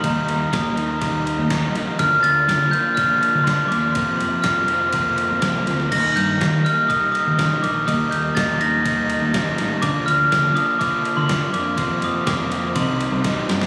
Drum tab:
CC |----------------|----------------|----------------|x---------------|
RD |x-x-x-x-x-x-x-x-|x-x-x-x-x-x-x-x-|x-x-x-x-x-x-x-x-|--x-x-x-x-x-x-x-|
SD |----o-------o---|----o-------o-o-|----o-------o-oo|----o-------o---|
BD |o---o---o---o---|o---o---o---o---|o---o---o---o---|o---o---o---o---|

CC |----------------|----------------|----------------|
RD |x-x-x-x-x-x-x-x-|x-x-x-x-x-x-x-x-|x-x-x-x-x-x-x-x-|
SD |----o-------o-o-|----o-------o---|----o-------o-oo|
BD |o---o---o---o---|o---o---o---o---|o---o---o---o---|